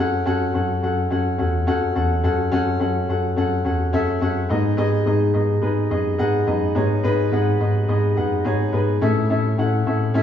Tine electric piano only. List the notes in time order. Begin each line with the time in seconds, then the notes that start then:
0.00 F#2
0.27 F#2
0.55 F#2
0.83 F#2
1.11 F#2
1.40 E2
1.68 F#2
1.96 E2
2.24 F#2
2.52 F#2
2.81 F#2
3.09 F#2
3.37 F#2
3.65 E2
3.93 F#2
4.22 F#2
4.50 G#2
4.78 G#2
5.07 G#2
5.35 G#2
5.63 G#2
5.91 F#2
6.19 G#2
6.47 F#2
6.75 G#2
7.04 G#2
7.32 G#2
7.60 G#2
7.88 G#2
8.17 F#2
8.45 G#2
8.73 G#2
9.02 A2
9.30 A2
9.58 A2
9.86 A2
10.14 A2